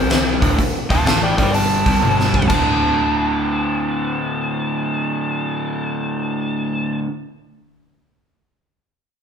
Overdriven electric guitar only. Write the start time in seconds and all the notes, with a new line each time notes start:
Already playing: C3 G3 C4
0.40 D2 A2 D3
0.58 muted overdriven electric guitar stroke
0.89 D2 A2 D3
1.06 A2 E3 A3
1.39 G2 D3 G3
1.86 C3 G3 C4
2.03 G2 D3 G3
2.50 D2 A2
2.54 D3